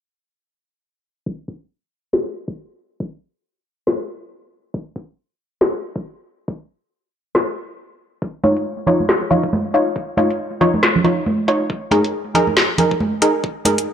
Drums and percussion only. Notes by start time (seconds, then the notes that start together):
1.26 kick
1.48 kick
2.13 snare
2.48 kick
3.00 kick
3.87 snare
4.74 kick
4.96 kick
5.61 snare
5.96 kick
6.48 kick
7.35 snare
8.22 kick
8.44 kick, closed hi-hat, high conga
8.57 closed hi-hat
8.87 closed hi-hat, low conga
9.00 high conga
9.09 snare
9.31 closed hi-hat, low conga
9.44 kick
9.53 high conga
9.74 closed hi-hat
9.96 kick
10.17 closed hi-hat, high conga
10.30 closed hi-hat
10.61 closed hi-hat, low conga
10.74 high conga
10.83 snare
10.96 low conga
11.04 closed hi-hat, low conga
11.26 high conga
11.48 closed hi-hat
11.70 kick
11.91 kick, closed hi-hat, high conga
12.04 closed hi-hat
12.35 closed hi-hat, low conga
12.47 high conga
12.57 snare
12.78 closed hi-hat, low conga
12.91 kick
13.00 high conga
13.22 closed hi-hat
13.44 kick
13.65 kick, closed hi-hat, high conga
13.78 closed hi-hat